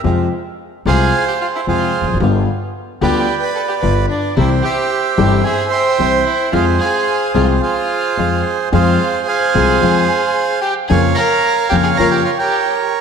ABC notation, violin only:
X:1
M:4/4
L:1/16
Q:1/4=111
K:Fm
V:1 name="Violin"
z6 A3 G F =E F3 z | z6 G3 =B =A G B2 =D2 | =E2 G4 G2 A2 c4 E2 | F2 A4 F2 F6 z2 |
F4 A8- A2 G2 | A2 B4 G A B G F G3 z2 |]